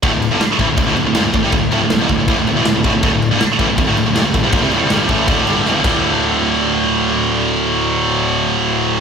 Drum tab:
CC |xxxxxxxx|xxxxxxxx|xxxxxxxx|xxxxxx-x|
SD |--o---o-|--o---o-|--o---o-|--o---o-|
BD |o--oo--o|o--oo--o|o--oo--o|o--oo--o|

CC |--------|--------|
SD |--------|--------|
BD |--------|--------|